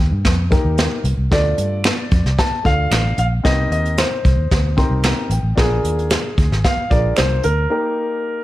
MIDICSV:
0, 0, Header, 1, 6, 480
1, 0, Start_track
1, 0, Tempo, 532387
1, 1185, Time_signature, 4, 2, 24, 8
1, 7609, End_track
2, 0, Start_track
2, 0, Title_t, "Grand piano"
2, 0, Program_c, 0, 0
2, 1197, Note_on_c, 0, 74, 88
2, 2154, Note_on_c, 0, 81, 98
2, 2179, Note_off_c, 0, 74, 0
2, 2373, Note_off_c, 0, 81, 0
2, 2397, Note_on_c, 0, 77, 102
2, 2862, Note_off_c, 0, 77, 0
2, 2876, Note_on_c, 0, 77, 83
2, 2929, Note_off_c, 0, 77, 0
2, 3108, Note_on_c, 0, 75, 92
2, 3329, Note_off_c, 0, 75, 0
2, 3352, Note_on_c, 0, 75, 77
2, 3591, Note_on_c, 0, 72, 67
2, 3595, Note_off_c, 0, 75, 0
2, 4272, Note_off_c, 0, 72, 0
2, 5038, Note_on_c, 0, 68, 80
2, 5991, Note_on_c, 0, 77, 86
2, 6020, Note_off_c, 0, 68, 0
2, 6211, Note_off_c, 0, 77, 0
2, 6226, Note_on_c, 0, 74, 88
2, 6462, Note_on_c, 0, 72, 85
2, 6473, Note_off_c, 0, 74, 0
2, 6686, Note_off_c, 0, 72, 0
2, 6708, Note_on_c, 0, 70, 78
2, 7609, Note_off_c, 0, 70, 0
2, 7609, End_track
3, 0, Start_track
3, 0, Title_t, "Grand piano"
3, 0, Program_c, 1, 0
3, 456, Note_on_c, 1, 58, 70
3, 461, Note_on_c, 1, 63, 66
3, 465, Note_on_c, 1, 67, 66
3, 469, Note_on_c, 1, 70, 75
3, 932, Note_off_c, 1, 58, 0
3, 935, Note_off_c, 1, 63, 0
3, 937, Note_off_c, 1, 67, 0
3, 939, Note_off_c, 1, 70, 0
3, 1180, Note_on_c, 1, 57, 70
3, 1187, Note_on_c, 1, 62, 60
3, 1190, Note_on_c, 1, 65, 59
3, 1198, Note_on_c, 1, 69, 72
3, 1811, Note_off_c, 1, 57, 0
3, 1815, Note_off_c, 1, 62, 0
3, 1816, Note_off_c, 1, 65, 0
3, 1820, Note_off_c, 1, 69, 0
3, 2376, Note_on_c, 1, 57, 55
3, 2381, Note_on_c, 1, 62, 51
3, 2389, Note_on_c, 1, 65, 51
3, 2392, Note_on_c, 1, 69, 60
3, 2852, Note_off_c, 1, 57, 0
3, 2855, Note_off_c, 1, 62, 0
3, 2858, Note_off_c, 1, 65, 0
3, 2860, Note_off_c, 1, 69, 0
3, 3097, Note_on_c, 1, 60, 69
3, 3102, Note_on_c, 1, 63, 67
3, 3105, Note_on_c, 1, 67, 66
3, 3115, Note_on_c, 1, 70, 72
3, 3730, Note_off_c, 1, 60, 0
3, 3732, Note_off_c, 1, 63, 0
3, 3734, Note_off_c, 1, 67, 0
3, 3739, Note_off_c, 1, 70, 0
3, 4299, Note_on_c, 1, 60, 75
3, 4308, Note_on_c, 1, 67, 69
3, 4308, Note_on_c, 1, 84, 61
3, 4309, Note_on_c, 1, 63, 65
3, 4313, Note_on_c, 1, 70, 76
3, 4530, Note_off_c, 1, 84, 0
3, 4552, Note_on_c, 1, 82, 65
3, 4772, Note_off_c, 1, 82, 0
3, 4774, Note_off_c, 1, 60, 0
3, 4778, Note_off_c, 1, 67, 0
3, 4779, Note_off_c, 1, 63, 0
3, 4781, Note_off_c, 1, 70, 0
3, 4796, Note_on_c, 1, 79, 59
3, 5008, Note_on_c, 1, 62, 69
3, 5014, Note_off_c, 1, 79, 0
3, 5016, Note_on_c, 1, 65, 61
3, 5024, Note_on_c, 1, 68, 65
3, 5027, Note_on_c, 1, 70, 82
3, 5645, Note_off_c, 1, 62, 0
3, 5650, Note_off_c, 1, 65, 0
3, 5654, Note_off_c, 1, 68, 0
3, 5655, Note_off_c, 1, 70, 0
3, 6223, Note_on_c, 1, 62, 62
3, 6225, Note_on_c, 1, 65, 61
3, 6234, Note_on_c, 1, 68, 57
3, 6238, Note_on_c, 1, 70, 69
3, 6696, Note_off_c, 1, 62, 0
3, 6697, Note_off_c, 1, 65, 0
3, 6701, Note_off_c, 1, 68, 0
3, 6703, Note_off_c, 1, 70, 0
3, 6943, Note_on_c, 1, 58, 75
3, 6947, Note_on_c, 1, 63, 65
3, 6955, Note_on_c, 1, 67, 64
3, 6955, Note_on_c, 1, 70, 79
3, 7572, Note_off_c, 1, 58, 0
3, 7574, Note_off_c, 1, 63, 0
3, 7578, Note_off_c, 1, 67, 0
3, 7578, Note_off_c, 1, 70, 0
3, 7609, End_track
4, 0, Start_track
4, 0, Title_t, "Fingered electric bass"
4, 0, Program_c, 2, 33
4, 104, Note_on_c, 2, 43, 78
4, 200, Note_off_c, 2, 43, 0
4, 225, Note_on_c, 2, 41, 82
4, 510, Note_off_c, 2, 41, 0
4, 583, Note_on_c, 2, 39, 74
4, 774, Note_off_c, 2, 39, 0
4, 938, Note_on_c, 2, 36, 78
4, 1036, Note_off_c, 2, 36, 0
4, 1060, Note_on_c, 2, 36, 73
4, 1157, Note_off_c, 2, 36, 0
4, 1186, Note_on_c, 2, 38, 88
4, 1375, Note_off_c, 2, 38, 0
4, 1426, Note_on_c, 2, 43, 77
4, 1711, Note_off_c, 2, 43, 0
4, 1909, Note_on_c, 2, 41, 78
4, 2003, Note_off_c, 2, 41, 0
4, 2027, Note_on_c, 2, 36, 83
4, 2121, Note_off_c, 2, 36, 0
4, 2386, Note_on_c, 2, 38, 78
4, 2576, Note_off_c, 2, 38, 0
4, 2624, Note_on_c, 2, 33, 80
4, 2814, Note_off_c, 2, 33, 0
4, 2866, Note_on_c, 2, 34, 70
4, 3056, Note_off_c, 2, 34, 0
4, 3109, Note_on_c, 2, 36, 91
4, 3297, Note_off_c, 2, 36, 0
4, 3340, Note_on_c, 2, 39, 78
4, 3627, Note_off_c, 2, 39, 0
4, 3832, Note_on_c, 2, 36, 76
4, 3924, Note_off_c, 2, 36, 0
4, 3933, Note_on_c, 2, 39, 78
4, 4032, Note_off_c, 2, 39, 0
4, 4069, Note_on_c, 2, 38, 80
4, 4352, Note_off_c, 2, 38, 0
4, 4416, Note_on_c, 2, 36, 81
4, 4610, Note_off_c, 2, 36, 0
4, 4775, Note_on_c, 2, 33, 77
4, 4874, Note_off_c, 2, 33, 0
4, 4895, Note_on_c, 2, 33, 69
4, 4994, Note_off_c, 2, 33, 0
4, 5023, Note_on_c, 2, 34, 102
4, 5214, Note_off_c, 2, 34, 0
4, 5261, Note_on_c, 2, 39, 78
4, 5548, Note_off_c, 2, 39, 0
4, 5750, Note_on_c, 2, 38, 77
4, 5843, Note_off_c, 2, 38, 0
4, 5868, Note_on_c, 2, 32, 75
4, 5962, Note_off_c, 2, 32, 0
4, 6228, Note_on_c, 2, 34, 84
4, 6417, Note_off_c, 2, 34, 0
4, 6476, Note_on_c, 2, 36, 89
4, 6662, Note_off_c, 2, 36, 0
4, 6714, Note_on_c, 2, 38, 83
4, 6900, Note_off_c, 2, 38, 0
4, 7609, End_track
5, 0, Start_track
5, 0, Title_t, "Muted fingered electric bass strokes"
5, 2263, Note_on_c, 9, 29, 45
5, 2353, Note_off_c, 9, 29, 0
5, 6106, Note_on_c, 9, 29, 44
5, 6196, Note_off_c, 9, 29, 0
5, 7609, End_track
6, 0, Start_track
6, 0, Title_t, "Drums"
6, 224, Note_on_c, 9, 38, 91
6, 226, Note_on_c, 9, 42, 76
6, 227, Note_on_c, 9, 36, 78
6, 314, Note_off_c, 9, 38, 0
6, 316, Note_off_c, 9, 42, 0
6, 318, Note_off_c, 9, 36, 0
6, 465, Note_on_c, 9, 42, 57
6, 468, Note_on_c, 9, 36, 87
6, 555, Note_off_c, 9, 42, 0
6, 558, Note_off_c, 9, 36, 0
6, 701, Note_on_c, 9, 42, 66
6, 709, Note_on_c, 9, 38, 100
6, 792, Note_off_c, 9, 42, 0
6, 800, Note_off_c, 9, 38, 0
6, 944, Note_on_c, 9, 42, 68
6, 1034, Note_off_c, 9, 42, 0
6, 1187, Note_on_c, 9, 36, 85
6, 1189, Note_on_c, 9, 42, 71
6, 1192, Note_on_c, 9, 38, 91
6, 1277, Note_off_c, 9, 36, 0
6, 1279, Note_off_c, 9, 42, 0
6, 1282, Note_off_c, 9, 38, 0
6, 1423, Note_on_c, 9, 42, 77
6, 1513, Note_off_c, 9, 42, 0
6, 1660, Note_on_c, 9, 26, 87
6, 1664, Note_on_c, 9, 42, 87
6, 1670, Note_on_c, 9, 38, 108
6, 1751, Note_off_c, 9, 26, 0
6, 1755, Note_off_c, 9, 42, 0
6, 1760, Note_off_c, 9, 38, 0
6, 1905, Note_on_c, 9, 42, 59
6, 1910, Note_on_c, 9, 36, 80
6, 1995, Note_off_c, 9, 42, 0
6, 2000, Note_off_c, 9, 36, 0
6, 2035, Note_on_c, 9, 38, 35
6, 2125, Note_off_c, 9, 38, 0
6, 2151, Note_on_c, 9, 36, 83
6, 2152, Note_on_c, 9, 38, 104
6, 2154, Note_on_c, 9, 42, 76
6, 2241, Note_off_c, 9, 36, 0
6, 2242, Note_off_c, 9, 38, 0
6, 2244, Note_off_c, 9, 42, 0
6, 2390, Note_on_c, 9, 36, 81
6, 2391, Note_on_c, 9, 42, 57
6, 2480, Note_off_c, 9, 36, 0
6, 2481, Note_off_c, 9, 42, 0
6, 2629, Note_on_c, 9, 26, 78
6, 2629, Note_on_c, 9, 42, 70
6, 2637, Note_on_c, 9, 38, 108
6, 2719, Note_off_c, 9, 26, 0
6, 2719, Note_off_c, 9, 42, 0
6, 2727, Note_off_c, 9, 38, 0
6, 2864, Note_on_c, 9, 42, 62
6, 2954, Note_off_c, 9, 42, 0
6, 3110, Note_on_c, 9, 36, 87
6, 3111, Note_on_c, 9, 42, 72
6, 3113, Note_on_c, 9, 38, 95
6, 3200, Note_off_c, 9, 36, 0
6, 3201, Note_off_c, 9, 42, 0
6, 3204, Note_off_c, 9, 38, 0
6, 3354, Note_on_c, 9, 42, 73
6, 3444, Note_off_c, 9, 42, 0
6, 3475, Note_on_c, 9, 42, 51
6, 3565, Note_off_c, 9, 42, 0
6, 3586, Note_on_c, 9, 42, 91
6, 3591, Note_on_c, 9, 38, 94
6, 3593, Note_on_c, 9, 26, 93
6, 3676, Note_off_c, 9, 42, 0
6, 3681, Note_off_c, 9, 38, 0
6, 3683, Note_off_c, 9, 26, 0
6, 3832, Note_on_c, 9, 36, 82
6, 3835, Note_on_c, 9, 42, 58
6, 3922, Note_off_c, 9, 36, 0
6, 3925, Note_off_c, 9, 42, 0
6, 4071, Note_on_c, 9, 36, 87
6, 4072, Note_on_c, 9, 38, 108
6, 4074, Note_on_c, 9, 42, 75
6, 4161, Note_off_c, 9, 36, 0
6, 4162, Note_off_c, 9, 38, 0
6, 4164, Note_off_c, 9, 42, 0
6, 4308, Note_on_c, 9, 36, 95
6, 4309, Note_on_c, 9, 42, 58
6, 4398, Note_off_c, 9, 36, 0
6, 4399, Note_off_c, 9, 42, 0
6, 4541, Note_on_c, 9, 42, 79
6, 4542, Note_on_c, 9, 26, 88
6, 4549, Note_on_c, 9, 38, 112
6, 4631, Note_off_c, 9, 42, 0
6, 4632, Note_off_c, 9, 26, 0
6, 4639, Note_off_c, 9, 38, 0
6, 4783, Note_on_c, 9, 42, 70
6, 4873, Note_off_c, 9, 42, 0
6, 5027, Note_on_c, 9, 36, 81
6, 5027, Note_on_c, 9, 42, 67
6, 5030, Note_on_c, 9, 38, 92
6, 5117, Note_off_c, 9, 36, 0
6, 5117, Note_off_c, 9, 42, 0
6, 5120, Note_off_c, 9, 38, 0
6, 5271, Note_on_c, 9, 42, 78
6, 5362, Note_off_c, 9, 42, 0
6, 5398, Note_on_c, 9, 42, 44
6, 5488, Note_off_c, 9, 42, 0
6, 5504, Note_on_c, 9, 42, 89
6, 5507, Note_on_c, 9, 26, 84
6, 5509, Note_on_c, 9, 38, 101
6, 5594, Note_off_c, 9, 42, 0
6, 5597, Note_off_c, 9, 26, 0
6, 5599, Note_off_c, 9, 38, 0
6, 5751, Note_on_c, 9, 36, 88
6, 5752, Note_on_c, 9, 42, 62
6, 5841, Note_off_c, 9, 36, 0
6, 5842, Note_off_c, 9, 42, 0
6, 5880, Note_on_c, 9, 38, 34
6, 5970, Note_off_c, 9, 38, 0
6, 5991, Note_on_c, 9, 36, 87
6, 5992, Note_on_c, 9, 38, 104
6, 5994, Note_on_c, 9, 42, 79
6, 6081, Note_off_c, 9, 36, 0
6, 6082, Note_off_c, 9, 38, 0
6, 6084, Note_off_c, 9, 42, 0
6, 6231, Note_on_c, 9, 36, 90
6, 6233, Note_on_c, 9, 42, 59
6, 6321, Note_off_c, 9, 36, 0
6, 6324, Note_off_c, 9, 42, 0
6, 6460, Note_on_c, 9, 26, 82
6, 6465, Note_on_c, 9, 42, 71
6, 6473, Note_on_c, 9, 38, 104
6, 6550, Note_off_c, 9, 26, 0
6, 6555, Note_off_c, 9, 42, 0
6, 6563, Note_off_c, 9, 38, 0
6, 6701, Note_on_c, 9, 42, 67
6, 6791, Note_off_c, 9, 42, 0
6, 7609, End_track
0, 0, End_of_file